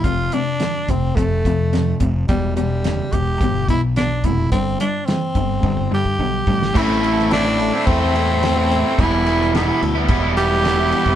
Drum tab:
CC |----------------|----------------|----------------|x-x-x-x-x-x-x-x-|
HH |x-x-x-x-x-x-x-x-|x-x-x-x-x-x-x-x-|x-x-x-x---------|----------------|
SD |----o-------o---|----o-------o---|----o----------o|---oo-------o---|
BD |o-----o-o-o---o-|o-----o-o-o---o-|o-----o-oo-oo-o-|o-------o-------|

CC |x-x-x-x-x-x-x-x-|
HH |----------------|
SD |---oo-------o---|
BD |o-------o------o|